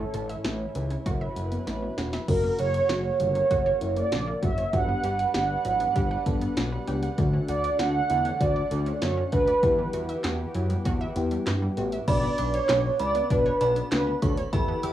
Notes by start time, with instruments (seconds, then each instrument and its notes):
Already playing: analog synth pad A3 C#4 E4, analog polysynth A4
0.14 analog synth bass A1, synth arpeggio sound A4, closed hi-hat
0.29 synth arpeggio sound E5, closed hi-hat
0.44 analog synth bass A1, synth arpeggio sound A4, snare, closed hi-hat
0.75 analog synth bass C#2, synth arpeggio sound E3, closed hi-hat
0.90 synth arpeggio sound C#4, closed hi-hat
1.06 analog synth bass F#1, analog synth pad F#3 B4, synth arpeggio sound F#4, kick, closed hi-hat
1.21 synth arpeggio sound E5
1.36 analog synth bass F#1, closed hi-hat
1.52 synth arpeggio sound B3, closed hi-hat
1.67 analog synth bass A1, synth arpeggio sound E3, snare, closed hi-hat
1.82 synth arpeggio sound B3
1.98 analog synth bass E1, synth arpeggio sound F#4, snare, closed hi-hat
2.13 synth arpeggio sound E5, snare, closed hi-hat
2.28 analog synth bass F#1, analog synth pad C#3 A#3 F#4, synth arpeggio sound C#3, fm electric piano A#3 C#4 F#4, analog polysynth A#4, kick, closed hi-hat, crash
2.44 synth arpeggio sound A#3
2.59 analog synth bass F#1, synth arpeggio sound F#4, analog polysynth C#5, closed hi-hat
2.74 synth arpeggio sound C#5, closed hi-hat
2.89 analog synth bass F#1, synth arpeggio sound F#4, snare, closed hi-hat
3.20 analog synth bass G1, synth arpeggio sound C#3, analog polysynth C#5, closed hi-hat
3.35 synth arpeggio sound A#3, closed hi-hat
3.51 analog synth bass F#1, synth arpeggio sound F#4, kick, closed hi-hat
3.66 synth arpeggio sound C#5
3.81 analog synth bass F#1, fm electric piano A#3 C#4 E4, closed hi-hat
3.97 synth arpeggio sound A#3, analog polysynth D5, closed hi-hat
4.12 analog synth bass A#1, synth arpeggio sound C#3, snare, closed hi-hat
4.27 synth arpeggio sound A#3
4.42 analog synth bass F#1, fm electric piano A#3 C#4 F#4, synth arpeggio sound F#4, analog polysynth E5, kick, closed hi-hat
4.58 synth arpeggio sound C#5, closed hi-hat
4.73 analog synth bass G1, synth arpeggio sound F#3, analog synth pad G3 D4 B4 F#5, fm electric piano B3 D4 G4, analog polysynth F#5, kick, closed hi-hat
4.88 synth arpeggio sound B3
5.04 analog synth bass G1, synth arpeggio sound G4, closed hi-hat
5.19 synth arpeggio sound F#5, closed hi-hat
5.34 analog synth bass G1, synth arpeggio sound G4, analog polysynth F#5, snare, closed hi-hat
5.65 analog synth bass A1, synth arpeggio sound F#3, closed hi-hat
5.80 synth arpeggio sound B3, closed hi-hat
5.96 analog synth bass G1, synth arpeggio sound G4, kick, closed hi-hat
6.11 synth arpeggio sound F#5
6.26 analog synth bass G1, fm electric piano B3 D4 A4, kick, closed hi-hat
6.41 synth arpeggio sound B3, closed hi-hat
6.57 analog synth bass B1, synth arpeggio sound F#3, snare, closed hi-hat
6.72 synth arpeggio sound B3
6.87 analog synth bass C#2, fm electric piano B3 D4 G4, synth arpeggio sound G4, closed hi-hat
7.03 synth arpeggio sound F#5, closed hi-hat
7.18 analog synth bass D2, synth arpeggio sound D3, analog synth pad D3 A3 D4, fm electric piano A3 D4 F#4, kick, closed hi-hat
7.33 synth arpeggio sound C#4
7.48 analog synth bass D2, synth arpeggio sound F#4, analog polysynth D5, closed hi-hat
7.64 synth arpeggio sound D5, closed hi-hat
7.79 analog synth bass D2, synth arpeggio sound F#4, analog polysynth F#5, snare, closed hi-hat
8.10 analog synth bass E2, synth arpeggio sound D3, closed hi-hat
8.25 synth arpeggio sound C#4, closed hi-hat
8.40 analog synth bass D2, synth arpeggio sound F#4, analog polysynth D5, kick, closed hi-hat
8.56 synth arpeggio sound D5
8.71 analog synth bass D2, fm electric piano A3 D4 A4, closed hi-hat
8.86 synth arpeggio sound C#4, closed hi-hat
9.02 analog synth bass F#2, synth arpeggio sound D3, analog polysynth C#5, snare, closed hi-hat
9.17 synth arpeggio sound C#4
9.32 analog synth bass D2, fm electric piano A3 D4 A4, synth arpeggio sound F#4, analog polysynth B4, kick, closed hi-hat
9.47 synth arpeggio sound D5, closed hi-hat
9.63 analog synth bass E2, synth arpeggio sound E3, analog synth pad E3 B3 G4, fm electric piano B3 E4 G4, kick, closed hi-hat
9.78 synth arpeggio sound G3
9.93 analog synth bass E2, synth arpeggio sound F#4, closed hi-hat
10.09 synth arpeggio sound E5, closed hi-hat
10.24 analog synth bass E2, synth arpeggio sound F#4, snare, clap, closed hi-hat
10.55 analog synth bass F#2, synth arpeggio sound E3, closed hi-hat
10.70 synth arpeggio sound G3, closed hi-hat
10.85 analog synth bass E2, synth arpeggio sound F#4, kick, closed hi-hat
11.01 synth arpeggio sound E5
11.16 analog synth bass E2, fm electric piano B3 E4 G4, closed hi-hat
11.31 synth arpeggio sound G3, closed hi-hat
11.47 analog synth bass G2, synth arpeggio sound E3, snare, clap, closed hi-hat
11.62 synth arpeggio sound G3
11.77 analog synth bass A1, fm electric piano B3 E4 G4, synth arpeggio sound F#4, closed hi-hat
11.92 synth arpeggio sound E5, closed hi-hat
12.08 analog synth bass B1, synth arpeggio sound C#3, analog synth pad B3 D4, fm electric piano D4 F#4 B4, analog polysynth D5, synth bell B5, kick, closed hi-hat, crash
12.23 synth arpeggio sound B3
12.38 analog synth bass B1, synth arpeggio sound D4, synth bell D6, closed hi-hat
12.54 synth arpeggio sound C#5, analog polysynth C#5, closed hi-hat
12.69 analog synth bass B1, synth arpeggio sound D4, snare, clap, closed hi-hat
12.99 analog synth bass C#2, synth arpeggio sound C#3, analog polysynth D5, synth bell B5, closed hi-hat
13.15 synth arpeggio sound B3, closed hi-hat
13.30 analog synth bass B1, synth arpeggio sound D4, analog polysynth B4, kick, closed hi-hat
13.46 synth arpeggio sound C#5
13.61 analog synth bass B1, synth arpeggio sound D4, fm electric piano D4 F#4 B4, synth bell B5, closed hi-hat
13.76 synth arpeggio sound B3, closed hi-hat
13.92 analog synth bass D2, synth arpeggio sound C#3, analog polysynth B4, snare, clap, closed hi-hat
14.07 synth arpeggio sound B3
14.22 analog synth bass D2, fm electric piano D4 F#4 C#5, synth arpeggio sound D4, analog polysynth A4, synth bell C#6, kick, closed hi-hat
14.37 synth arpeggio sound C#5, closed hi-hat
14.53 analog synth bass E2, analog synth pad E3 E4 G4 B4, synth arpeggio sound E3, fm electric piano E4 G4 B4, analog polysynth A4, synth bell B5, kick, closed hi-hat
14.68 synth arpeggio sound B3
14.83 analog synth bass E2, synth arpeggio sound G4, synth bell E6, closed hi-hat